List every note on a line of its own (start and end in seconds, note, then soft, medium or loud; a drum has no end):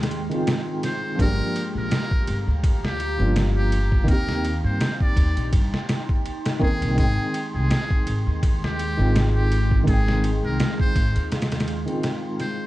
0.00 0.27 D#2 medium
0.00 0.25 D#3 medium
0.00 0.26 G#3 medium
0.00 1.15 G#3 medium
0.00 0.27 C4 medium
0.00 0.29 G5 medium
0.00 1.16 G5 medium
0.00 1.15 C6 medium
0.00 snare medium
0.00 ride medium
0.11 ride medium
0.29 0.60 D#3 medium
0.29 0.61 G#3 medium
0.29 0.62 C4 medium
0.29 ride soft
0.34 0.62 F4 medium
0.47 snare loud
0.47 ride medium
0.83 1.17 C5 medium
0.83 snare medium
0.83 ride medium
1.15 1.37 G1 medium
1.15 3.13 F3 medium
1.15 3.15 A#3 medium
1.15 4.05 F5 medium
1.15 4.05 A#5 medium
1.19 3.16 D4 medium
1.19 4.06 G4 medium
1.19 1.70 A#4 loud
1.19 kick loud
1.19 ride medium
1.23 3.17 G4 medium
1.56 ride medium
1.75 1.90 A#1 medium
1.75 2.41 A#4 medium
1.91 snare loud
1.91 ride medium
2.11 kick medium
2.27 2.45 G1 medium
2.27 ride medium
2.47 3.16 D2 medium
2.64 kick loud
2.64 ride loud
2.85 3.49 G4 loud
2.85 snare medium
3.00 ride medium
3.17 4.05 G1 loud
3.17 3.49 F3 medium
3.17 3.50 A#3 medium
3.17 3.50 D4 medium
3.22 3.51 F4 medium
3.36 snare loud
3.36 ride medium
3.57 4.04 G4 medium
3.72 ride medium
3.92 kick medium
4.04 6.02 D#3 medium
4.04 6.04 A#3 medium
4.08 4.60 D#2 medium
4.08 6.05 C4 medium
4.08 6.95 D#4 medium
4.08 4.59 A#4 loud
4.08 6.95 G5 medium
4.08 12.67 C6 medium
4.08 kick loud
4.08 ride medium
4.13 6.07 G4 medium
4.29 snare soft
4.45 ride medium
4.64 4.79 G2 medium
4.64 4.97 C5 medium
4.81 snare loud
4.81 ride medium
5.00 5.49 D5 loud
5.00 kick medium
5.17 5.34 D#2 medium
5.17 kick medium
5.17 ride medium
5.36 5.52 A#1 medium
5.36 ride soft
5.53 5.71 G2 medium
5.53 kick loud
5.53 ride medium
5.74 snare medium
5.89 snare loud
5.89 ride medium
6.09 kick medium
6.26 ride medium
6.46 snare loud
6.46 ride medium
6.59 6.83 D#2 medium
6.59 6.93 D#3 medium
6.59 6.93 A#3 medium
6.59 6.94 C4 medium
6.59 6.95 G#4 loud
6.59 kick medium
6.64 6.95 A#4 medium
6.82 6.96 C2 medium
6.82 ride medium
6.94 7.15 G#1 loud
6.94 8.92 D#3 medium
6.94 12.67 G#3 medium
6.94 8.93 G#3 medium
6.94 9.84 G5 medium
6.94 kick loud
6.94 ride medium
6.99 8.95 C4 medium
6.99 7.48 G#4 loud
7.03 8.96 G5 medium
7.34 ride medium
7.54 7.68 C2 medium
7.54 8.18 G#4 medium
7.71 snare loud
7.71 ride medium
7.91 kick medium
8.07 8.24 G#1 medium
8.07 ride medium
8.27 8.95 D#2 medium
8.43 kick loud
8.43 ride medium
8.64 9.27 G4 loud
8.64 snare medium
8.79 ride medium
8.97 10.40 G#1 loud
8.97 9.28 D#3 medium
8.97 9.29 G#3 medium
8.97 9.29 C4 medium
9.01 9.30 F4 medium
9.16 snare loud
9.16 ride medium
9.36 9.83 G4 loud
9.52 ride medium
9.71 kick loud
9.84 11.81 D#3 medium
9.84 11.83 G#3 medium
9.84 12.67 F5 medium
9.84 kick loud
9.88 11.84 C4 medium
9.88 10.38 G#4 loud
9.88 ride medium
9.93 11.86 G5 medium
10.08 snare medium
10.24 ride medium
10.43 10.57 C2 medium
10.43 10.76 A#4 medium
10.60 snare loud
10.60 ride medium
10.80 11.27 C5 loud
10.80 kick loud
10.96 11.13 G#1 medium
10.96 kick medium
10.96 ride medium
11.16 11.84 D#2 medium
11.16 ride soft
11.32 snare medium
11.32 ride medium
11.42 snare medium
11.42 ride medium
11.52 snare loud
11.52 ride medium
11.60 snare medium
11.60 ride medium
11.68 ride medium
11.86 12.17 D#3 medium
11.86 12.17 G#3 medium
11.86 12.18 C4 medium
11.86 ride soft
11.90 12.19 F4 medium
12.03 snare loud
12.03 ride medium
12.40 12.67 C5 medium
12.40 snare medium
12.40 ride medium